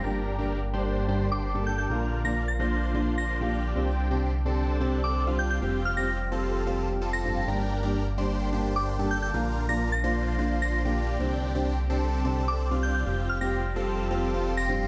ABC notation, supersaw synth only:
X:1
M:4/4
L:1/16
Q:1/4=129
K:Gm
V:1 name="Supersaw synth"
[DGB]3 [DGB]2 z [DGc]3 [DGc]2 [DGc]2 [DGA]3 | [DFB]3 [DFB]2 z [DFc]3 [DFc]2 [DFc]2 [DFG]3 | [CDG]3 [CDG]2 z [CDA]3 [CDA]2 [CDA]2 [CDF]3 | [CFG]3 [CFG]2 z [CFA]3 [CFA]2 z [CFA] [CFA]3 |
[DGB]3 [DGB]2 z [DGc]3 [DGc]2 [DGc]2 [DGA]3 | [DFB]3 [DFB]2 z [DFc]3 [DFc]2 [DFc]2 [DFG]3 | [CDG]3 [CDG]2 z [CDA]3 [CDA]2 [CDA]2 [CDF]3 | [CFG]3 [CFG]2 z [CFA]3 [CFA]2 [CFA]2 [CFG]3 |]